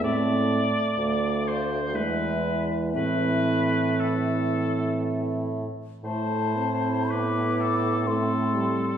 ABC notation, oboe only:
X:1
M:3/4
L:1/8
Q:1/4=60
K:Am
V:1 name="Oboe"
d3 c B z | B2 A2 z2 | c2 B A A2 |]